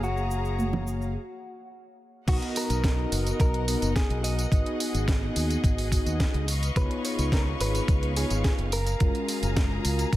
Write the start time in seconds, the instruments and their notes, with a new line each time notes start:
Already playing: fingered electric bass F#1, analog polysynth A#3 F#4 G#4 C#5 F5, string section G#4 F5 A#5
0.03 clean electric guitar F#4, cabasa
0.17 cabasa
0.31 cabasa
0.45 cabasa
0.59 high conga, cabasa
0.73 high bongo, low conga
0.87 cabasa
1.02 cabasa
2.27 fingered electric bass B1, analog polysynth B3 D#4 F#4 A#4 D#5, clean electric guitar F#4, string section A#4 D#5 F#5, kick, closed hi-hat, crash, tambourine
2.42 closed hi-hat
2.56 clean electric guitar A#4, open hi-hat, tambourine
2.70 fingered electric bass B1, closed hi-hat, tambourine
2.84 kick, snare, closed hi-hat, tambourine
3.12 fingered electric bass F#1, open hi-hat, tambourine
3.27 closed hi-hat, tambourine
3.40 fingered electric bass B1, clean electric guitar A#4, kick, closed hi-hat, tambourine
3.54 closed hi-hat
3.67 analog polysynth B3 D#4 F#4 A#4 D#5, open hi-hat, tambourine
3.82 fingered electric bass F#1, closed hi-hat, tambourine
3.96 clean electric guitar G#4, kick, snare, closed hi-hat, tambourine
4.10 fingered electric bass B1, closed hi-hat
4.24 clean electric guitar D#5, open hi-hat, tambourine
4.39 closed hi-hat, tambourine
4.51 fingered electric bass G#1, analog polysynth B3 D#4 F#4 G#4 D#5, string section G#4, kick, closed hi-hat, tambourine
4.66 closed hi-hat
4.80 open hi-hat, tambourine
4.94 fingered electric bass G#1, closed hi-hat, tambourine
5.08 kick, snare, closed hi-hat, tambourine
5.36 fingered electric bass D#2, open hi-hat, tambourine
5.50 closed hi-hat, tambourine
5.64 fingered electric bass G#1, kick, closed hi-hat, tambourine
5.78 open hi-hat
5.91 analog polysynth B3 D#4 F#4 G#4 D#5, kick, open hi-hat, tambourine
6.06 fingered electric bass D#2, closed hi-hat, tambourine
6.20 kick, snare, closed hi-hat, tambourine
6.34 fingered electric bass C#2, closed hi-hat
6.48 string section B4 F5 C#6, open hi-hat, tambourine
6.63 closed hi-hat, tambourine
6.75 fingered electric bass C#2, analog polysynth B3 D#4 F4 G#4 C#5, clean electric guitar B4, kick, closed hi-hat, tambourine
6.91 closed hi-hat
7.05 clean electric guitar C#5, open hi-hat, tambourine
7.19 fingered electric bass C#2, closed hi-hat, tambourine
7.32 clean electric guitar A#4, kick, snare, closed hi-hat, tambourine
7.60 fingered electric bass G#1, clean electric guitar B4, open hi-hat, tambourine
7.75 closed hi-hat, tambourine
7.88 fingered electric bass C#2, kick, closed hi-hat, tambourine
8.03 closed hi-hat
8.16 analog polysynth B3 D#4 F4 G#4 C#5, clean electric guitar G#4, open hi-hat, tambourine
8.30 fingered electric bass G#1, closed hi-hat, tambourine
8.44 clean electric guitar G#4, kick, snare, closed hi-hat, tambourine
8.59 fingered electric bass F#1, closed hi-hat
8.72 string section G#4 A#5, clean electric guitar A#4, open hi-hat, tambourine
8.87 closed hi-hat, tambourine
8.99 fingered electric bass F#1, analog polysynth G#3 C#4 F4 F#4 A#4, kick, closed hi-hat, tambourine
9.15 closed hi-hat
9.29 open hi-hat, tambourine
9.43 fingered electric bass F#1, closed hi-hat, tambourine
9.57 kick, snare, closed hi-hat, tambourine
9.85 fingered electric bass C#2, open hi-hat, tambourine
9.99 closed hi-hat, tambourine
10.13 fingered electric bass F#1, kick, closed hi-hat, tambourine